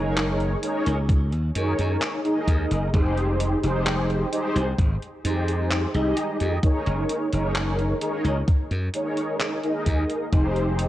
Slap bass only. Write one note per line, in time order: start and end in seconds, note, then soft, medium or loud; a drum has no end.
0.00 0.54 F#1 medium
0.87 1.33 C#2 loud
1.33 1.50 D#2 medium
1.56 1.73 F#2 medium
1.79 1.96 F#2 medium
2.47 2.65 D#2 medium
2.71 2.88 F#1 medium
2.94 3.54 F1 medium
3.63 4.23 F1 medium
4.56 4.73 C2 loud
4.78 4.96 G#1 medium
5.25 5.85 F2 loud
5.94 6.11 C2 medium
6.41 6.58 F2 medium
6.63 muted slap bass stroke soft
6.87 7.04 F#1 loud
7.33 7.92 F#1 medium
8.24 8.42 C#2 medium
8.71 8.88 F#2 medium
9.86 10.04 D#2 medium
10.32 10.88 F1 medium